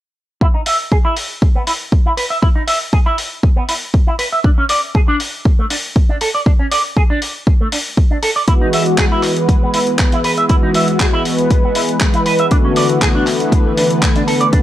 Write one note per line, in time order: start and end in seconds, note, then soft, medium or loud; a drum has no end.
0.41 0.45 E4 medium
0.41 kick loud
0.55 0.61 D#4 medium
0.66 0.76 E5 medium
0.66 open hi-hat medium
0.92 0.96 G#4 medium
0.92 kick medium
1.05 1.14 E4 medium
1.17 open hi-hat medium
1.42 kick loud
1.55 1.61 B3 medium
1.67 1.71 E4 medium
1.67 open hi-hat medium
1.92 kick loud
2.06 2.12 E4 medium
2.17 2.24 B4 medium
2.17 open hi-hat medium
2.30 2.37 E5 medium
2.42 2.47 E4 medium
2.42 kick loud
2.56 2.62 D#4 medium
2.68 2.78 E5 medium
2.68 open hi-hat medium
2.93 2.97 G#4 medium
2.93 kick medium
3.06 3.15 E4 medium
3.18 open hi-hat medium
3.43 kick loud
3.56 3.63 B3 medium
3.69 3.73 E4 medium
3.69 open hi-hat medium
3.94 kick medium
4.07 4.13 E4 medium
4.19 4.26 B4 medium
4.19 open hi-hat medium
4.32 4.39 E5 medium
4.44 4.48 D4 medium
4.44 kick loud
4.58 4.64 C#4 medium
4.69 4.80 D5 medium
4.69 open hi-hat medium
4.95 4.99 G#4 medium
4.95 kick loud
5.08 5.17 D4 medium
5.20 open hi-hat medium
5.45 kick loud
5.59 5.65 A3 medium
5.70 5.75 D4 medium
5.70 open hi-hat loud
5.96 kick loud
6.09 6.15 D4 medium
6.21 6.28 A4 medium
6.21 open hi-hat medium
6.35 6.40 D5 medium
6.46 6.50 D4 medium
6.46 kick loud
6.59 6.66 C#4 medium
6.71 6.81 D5 medium
6.71 open hi-hat loud
6.97 7.01 G#4 medium
6.97 kick loud
7.10 7.19 D4 medium
7.22 open hi-hat medium
7.47 kick loud
7.61 7.66 A3 medium
7.72 7.76 D4 medium
7.72 open hi-hat loud
7.97 kick loud
8.11 8.17 D4 medium
8.23 8.29 A4 medium
8.23 open hi-hat medium
8.36 8.42 D5 medium
8.47 9.20 E3 medium
8.47 9.20 G#3 medium
8.47 9.21 B3 medium
8.47 8.52 E4 medium
8.47 9.21 F#4 medium
8.47 kick loud
8.47 closed hi-hat medium
8.61 8.67 D#4 medium
8.73 8.83 E5 medium
8.73 open hi-hat medium
8.86 closed hi-hat soft
8.98 9.03 G#4 medium
8.98 kick medium
8.98 clap loud
8.98 closed hi-hat medium
9.12 9.21 E4 medium
9.23 10.46 E3 medium
9.23 10.47 G#3 medium
9.23 10.47 B3 medium
9.23 10.47 B4 medium
9.23 clap soft
9.23 open hi-hat medium
9.36 closed hi-hat soft
9.49 kick loud
9.49 closed hi-hat medium
9.62 9.68 B3 medium
9.74 9.78 E4 medium
9.74 open hi-hat medium
9.87 closed hi-hat soft
9.99 kick loud
9.99 clap loud
9.99 closed hi-hat medium
10.12 10.19 E4 medium
10.12 closed hi-hat soft
10.24 10.31 B4 medium
10.24 open hi-hat medium
10.37 10.44 E5 medium
10.37 closed hi-hat soft
10.49 11.22 E3 medium
10.49 11.22 G#3 medium
10.49 11.22 B3 medium
10.49 10.54 E4 medium
10.49 11.23 F#4 medium
10.49 kick loud
10.49 closed hi-hat medium
10.63 10.69 D#4 medium
10.74 10.85 E5 medium
10.74 open hi-hat medium
10.88 closed hi-hat soft
11.00 11.04 G#4 medium
11.00 kick medium
11.00 clap loud
11.00 closed hi-hat medium
11.13 11.22 E4 medium
11.24 12.48 E3 medium
11.24 12.48 G#3 medium
11.24 12.49 B3 medium
11.24 12.49 B4 medium
11.24 open hi-hat medium
11.38 closed hi-hat soft
11.51 kick loud
11.51 closed hi-hat medium
11.64 11.70 B3 medium
11.75 11.80 E4 medium
11.75 open hi-hat medium
11.89 closed hi-hat soft
12.00 kick loud
12.00 clap loud
12.00 closed hi-hat medium
12.14 12.20 E4 medium
12.14 closed hi-hat soft
12.26 12.33 B4 medium
12.26 open hi-hat medium
12.39 12.45 E5 medium
12.39 closed hi-hat soft
12.51 13.25 D3 medium
12.51 13.24 E3 medium
12.51 13.24 A3 medium
12.51 13.24 B3 medium
12.51 12.55 D4 medium
12.51 13.25 F#4 medium
12.51 kick loud
12.51 closed hi-hat medium
12.65 12.71 C#4 medium
12.76 12.87 D5 medium
12.76 open hi-hat medium
12.89 closed hi-hat soft
13.02 13.06 G#4 medium
13.02 kick medium
13.02 clap loud
13.02 closed hi-hat medium
13.15 13.24 D4 medium
13.27 14.51 D3 medium
13.27 14.50 E3 medium
13.27 14.50 A3 medium
13.27 14.51 B3 medium
13.27 14.51 B4 medium
13.27 clap soft
13.27 open hi-hat medium
13.40 closed hi-hat soft
13.52 kick loud
13.52 closed hi-hat medium
13.66 13.72 A3 medium
13.77 13.81 D4 medium
13.77 open hi-hat medium
13.90 closed hi-hat soft
14.02 kick medium
14.02 clap loud
14.02 closed hi-hat medium
14.16 14.22 D4 medium
14.16 closed hi-hat soft
14.28 14.34 A4 medium
14.28 open hi-hat medium
14.41 14.47 D5 medium
14.41 closed hi-hat medium
14.52 14.62 D3 medium
14.52 14.62 E3 medium
14.52 14.62 A3 medium
14.52 14.62 B3 medium
14.52 14.57 D4 medium
14.52 14.62 F#4 loud
14.52 kick loud
14.52 closed hi-hat medium